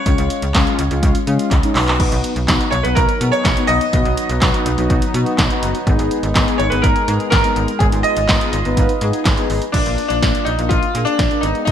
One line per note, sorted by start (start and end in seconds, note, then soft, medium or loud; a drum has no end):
0.00 1.71 C#5 loud
0.06 0.17 C#2 loud
0.06 0.42 G#3 medium
0.06 0.42 C#4 medium
0.06 0.42 F4 medium
0.06 kick loud
0.06 closed hi-hat medium
0.18 0.29 C#2 loud
0.18 closed hi-hat medium
0.30 closed hi-hat medium
0.42 0.53 C#2 medium
0.42 closed hi-hat medium
0.54 0.65 C#2 loud
0.54 0.81 G#3 medium
0.54 0.81 C#4 medium
0.54 0.81 F4 loud
0.54 kick loud
0.54 snare loud
0.54 clap loud
0.54 closed hi-hat medium
0.67 closed hi-hat soft
0.79 0.90 C#2 loud
0.79 closed hi-hat medium
0.91 1.02 C#2 loud
0.91 1.18 G#3 medium
0.91 1.18 C#4 medium
0.91 1.18 F4 loud
0.91 closed hi-hat soft
1.03 1.14 C#2 loud
1.03 kick loud
1.03 closed hi-hat medium
1.15 closed hi-hat medium
1.27 1.38 C#3 loud
1.27 1.54 G#3 medium
1.27 1.54 C#4 medium
1.27 1.54 F4 loud
1.27 closed hi-hat medium
1.39 closed hi-hat medium
1.51 1.62 C#2 loud
1.51 kick loud
1.51 clap medium
1.51 closed hi-hat medium
1.63 1.76 G#3 medium
1.63 1.75 C#4 medium
1.63 1.74 D#4 loud
1.63 closed hi-hat medium
1.75 2.08 B1 loud
1.75 2.34 B3 loud
1.75 2.34 D#4 medium
1.75 2.34 F#4 loud
1.75 clap loud
1.75 open hi-hat medium
1.88 clap medium
1.88 closed hi-hat soft
2.00 5.83 F#3 medium
2.00 9.70 B3 medium
2.00 7.77 D#4 loud
2.00 kick loud
2.00 crash medium
2.12 2.23 B1 loud
2.12 closed hi-hat medium
2.24 closed hi-hat medium
2.36 2.47 B1 medium
2.36 closed hi-hat medium
2.48 2.59 B1 loud
2.48 2.75 B3 medium
2.48 2.75 D#4 medium
2.48 2.75 F#4 loud
2.48 kick loud
2.48 snare loud
2.48 clap loud
2.48 closed hi-hat medium
2.61 closed hi-hat soft
2.71 2.83 B1 loud
2.71 2.84 C#5 loud
2.71 closed hi-hat medium
2.83 2.95 B1 loud
2.83 3.11 B3 medium
2.83 3.11 D#4 medium
2.83 3.11 F#4 medium
2.83 2.96 B4 medium
2.83 closed hi-hat medium
2.95 3.07 B1 loud
2.95 3.33 A#4 medium
2.95 kick loud
2.95 closed hi-hat medium
3.09 closed hi-hat medium
3.21 3.32 B2 loud
3.21 3.48 B3 medium
3.21 3.48 D#4 medium
3.21 3.48 G#4 medium
3.21 closed hi-hat medium
3.32 3.70 C#5 loud
3.32 closed hi-hat medium
3.45 3.56 B1 loud
3.45 kick loud
3.45 snare loud
3.45 clap medium
3.45 closed hi-hat medium
3.57 3.84 B3 medium
3.57 3.84 D#4 medium
3.57 3.84 F#4 medium
3.57 closed hi-hat medium
3.67 3.80 B1 loud
3.67 5.58 D#5 loud
3.67 closed hi-hat medium
3.81 closed hi-hat soft
3.93 4.04 B1 loud
3.93 4.29 B3 medium
3.93 4.29 D#4 medium
3.93 4.29 F#4 medium
3.93 kick loud
3.93 closed hi-hat medium
4.05 4.16 B1 loud
4.05 closed hi-hat medium
4.17 closed hi-hat medium
4.29 4.40 B1 loud
4.29 closed hi-hat medium
4.42 4.53 B1 loud
4.42 4.69 B3 medium
4.42 4.69 D#4 medium
4.42 4.69 F#4 loud
4.42 kick loud
4.42 snare loud
4.42 clap loud
4.42 closed hi-hat medium
4.54 closed hi-hat soft
4.66 4.77 B1 loud
4.66 closed hi-hat medium
4.78 4.89 B1 loud
4.78 5.05 B3 medium
4.78 5.05 D#4 medium
4.78 5.05 F#4 loud
4.78 closed hi-hat medium
4.90 5.01 B1 loud
4.90 kick loud
4.90 closed hi-hat medium
5.02 closed hi-hat medium
5.14 5.25 B2 loud
5.14 5.41 B3 medium
5.14 5.41 D#4 medium
5.14 5.41 F#4 loud
5.14 closed hi-hat medium
5.26 closed hi-hat medium
5.38 5.49 B1 loud
5.38 kick loud
5.38 snare loud
5.38 clap medium
5.38 closed hi-hat medium
5.50 5.78 B3 medium
5.50 5.78 D#4 medium
5.50 5.78 F#4 loud
5.50 closed hi-hat medium
5.63 5.73 F#1 loud
5.63 closed hi-hat medium
5.75 closed hi-hat soft
5.87 5.98 G#1 loud
5.87 9.70 G#3 medium
5.87 6.23 B3 medium
5.87 6.23 D#4 medium
5.87 6.23 G#4 loud
5.87 kick loud
5.87 closed hi-hat medium
5.99 6.10 G#1 loud
5.99 closed hi-hat medium
6.11 closed hi-hat medium
6.23 6.34 G#1 loud
6.23 closed hi-hat medium
6.35 6.46 G#1 loud
6.35 6.62 B3 medium
6.35 6.62 D#4 medium
6.35 6.62 G#4 loud
6.35 kick loud
6.35 snare loud
6.35 clap loud
6.35 closed hi-hat medium
6.48 closed hi-hat soft
6.58 6.70 G#1 loud
6.58 6.71 C#5 medium
6.58 closed hi-hat medium
6.70 6.82 G#1 loud
6.70 6.98 B3 medium
6.70 6.98 D#4 medium
6.70 6.98 G#4 medium
6.70 6.83 B4 medium
6.70 closed hi-hat medium
6.82 6.94 G#1 loud
6.82 7.29 A#4 medium
6.82 kick loud
6.82 closed hi-hat medium
6.96 closed hi-hat medium
7.08 7.19 G#2 loud
7.08 7.35 B3 medium
7.08 7.35 D#4 medium
7.08 7.35 G#4 medium
7.08 closed hi-hat medium
7.20 closed hi-hat medium
7.30 7.43 G#1 loud
7.30 7.81 A#4 loud
7.30 kick loud
7.30 snare loud
7.30 clap medium
7.30 closed hi-hat medium
7.44 7.71 B3 medium
7.44 7.71 D#4 medium
7.44 7.71 G#4 medium
7.44 closed hi-hat medium
7.56 7.67 G#1 loud
7.56 closed hi-hat medium
7.68 closed hi-hat medium
7.79 7.91 G#1 loud
7.79 8.16 B3 medium
7.79 8.16 D#4 medium
7.79 9.72 F4 loud
7.79 7.85 G#4 loud
7.79 8.16 G#4 medium
7.79 kick loud
7.79 closed hi-hat medium
7.92 8.03 G#1 loud
7.92 closed hi-hat medium
8.03 9.45 D#5 loud
8.03 closed hi-hat medium
8.17 8.28 G#1 loud
8.17 closed hi-hat medium
8.29 8.40 G#1 loud
8.29 8.56 B3 medium
8.29 8.56 D#4 medium
8.29 8.56 G#4 medium
8.29 kick loud
8.29 snare loud
8.29 clap loud
8.29 closed hi-hat medium
8.41 closed hi-hat soft
8.53 8.64 G#1 loud
8.53 closed hi-hat medium
8.65 8.76 G#1 loud
8.65 8.92 B3 medium
8.65 8.92 D#4 medium
8.65 8.92 B4 loud
8.65 closed hi-hat medium
8.77 8.88 G#1 loud
8.77 kick loud
8.77 closed hi-hat medium
8.89 closed hi-hat medium
9.01 9.12 G#2 loud
9.01 9.28 B3 medium
9.01 9.28 D#4 medium
9.01 9.28 G#4 loud
9.01 closed hi-hat medium
9.13 closed hi-hat medium
9.25 9.36 G#1 loud
9.25 kick loud
9.25 snare loud
9.25 clap medium
9.25 closed hi-hat medium
9.37 9.65 B3 medium
9.37 9.65 D#4 medium
9.37 9.64 G#4 loud
9.37 closed hi-hat medium
9.50 9.61 G#1 loud
9.50 open hi-hat medium
9.62 closed hi-hat medium
9.72 9.85 A#1 loud
9.72 10.01 A#3 medium
9.72 10.07 D4 loud
9.72 10.01 D4 medium
9.72 10.01 F4 medium
9.72 kick loud
9.72 closed hi-hat medium
9.72 crash medium
9.86 9.97 A#1 medium
9.86 closed hi-hat medium
9.98 closed hi-hat medium
10.08 10.21 A#1 medium
10.08 10.46 A#3 medium
10.08 10.47 D4 loud
10.08 10.46 D4 medium
10.08 10.46 F4 medium
10.08 closed hi-hat medium
10.23 10.33 A#1 loud
10.23 kick loud
10.23 snare loud
10.23 closed hi-hat medium
10.35 closed hi-hat soft
10.45 10.57 A#1 loud
10.45 10.71 D#4 loud
10.45 closed hi-hat medium
10.58 10.69 A#1 loud
10.58 10.85 A#3 medium
10.58 10.85 D4 medium
10.58 10.85 F4 medium
10.58 closed hi-hat soft
10.69 10.81 A#1 loud
10.69 11.07 F4 loud
10.69 kick loud
10.69 closed hi-hat medium
10.83 closed hi-hat medium
10.95 11.06 A#2 loud
10.95 11.22 A#3 medium
10.95 11.22 D4 medium
10.95 11.22 G#4 medium
10.95 closed hi-hat medium
11.05 11.43 D4 loud
11.05 closed hi-hat medium
11.19 11.30 A#1 medium
11.19 kick loud
11.19 snare loud
11.19 closed hi-hat medium
11.31 11.43 A#3 medium
11.31 11.43 D4 medium
11.31 11.43 F4 medium
11.31 closed hi-hat medium
11.41 11.54 G#1 loud
11.41 11.72 G#3 medium
11.41 11.72 B3 medium
11.41 11.64 D#4 loud
11.41 11.72 D#4 medium
11.41 closed hi-hat medium
11.55 closed hi-hat soft
11.65 11.72 G#1 loud
11.65 11.72 D#4 loud
11.65 kick loud
11.65 closed hi-hat medium